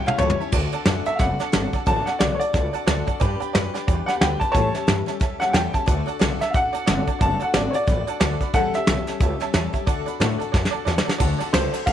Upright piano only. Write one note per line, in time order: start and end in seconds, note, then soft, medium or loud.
0.07 0.20 F5 medium
0.18 0.51 C#5 medium
1.06 1.20 E5 loud
1.15 1.18 F5 medium
1.19 1.85 F#5 medium
1.87 2.06 A5 loud
2.06 2.20 F#5 medium
2.19 2.38 D5 medium
2.35 2.37 C#5 medium
2.40 3.37 D5 loud
4.06 4.14 F#5 loud
4.16 4.19 F#5 medium
4.21 4.41 G5 loud
4.40 4.50 A5 loud
4.52 4.84 C#5 loud
4.52 4.86 A5 loud
5.40 5.48 F#5 loud
5.50 5.53 F#5 medium
5.50 5.73 G5 loud
5.74 5.87 A5 medium
6.41 6.54 E5 medium
6.50 6.53 F5 medium
6.55 7.20 F#5 loud
7.22 7.41 A5 loud
7.42 7.55 F#5 medium
7.55 7.74 D5 medium
7.71 7.73 C#5 medium
7.75 8.52 D5 loud
8.54 8.73 A4 loud
8.54 8.74 F#5 loud
8.75 9.71 E5 loud
11.53 11.86 C5 medium
11.86 11.93 F5 medium